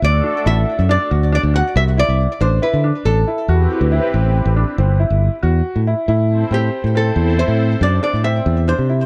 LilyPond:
<<
  \new Staff \with { instrumentName = "Hollow-body jazz guitar" } { \time 7/4 \key a \dorian \tempo 4 = 139 d''4 e''4 d''4 d''8 fis''8 e''8 d''4 c''8 b'4 | a'1. r4 | r4 g'4 a'4 c''4 d''8 d''8 e''4 c''4 | }
  \new Staff \with { instrumentName = "Analog synth pad" } { \time 7/4 \key a \dorian <a d' fis' a'>8 r1. r8 | r4 <c' e' g' b'>8 r8 <c' e' g' b'>8 r1 r8 | r8 <c' e' a' c''>8 r4 <c' e' a' c''>4. r2. r8 | }
  \new Staff \with { instrumentName = "Grand piano" } { \time 7/4 \key a \dorian r8 d'8 e'4 d'8 fis'8 d'8 fis'4 e'4 d'8 e'8 d'8~ | d'8 e'8 fis'4 e'8 c'4 d'8 c'8 e'4 fis'4 e'8 | e'4 c'4 c'4 e'4 d'8 d'8 c'4 d'8 e'8 | }
  \new Staff \with { instrumentName = "Fingered electric bass" } { \clef bass \time 7/4 \key a \dorian d,8 r8 a,,8 r16 fis,8 r16 d,8. d,8 r16 c,8. c,8 r16 a,,8 r16 d8 r16 | a,,8 r8 e,8 r16 d,8 r16 a,,8. a,,8 r16 g,,8. g,,8 r16 e,8 r16 a,8 r16 | a,4 a,8 r16 a,8. e,8. a,8. fis,8 r16 a,8. e,8. c8. | }
>>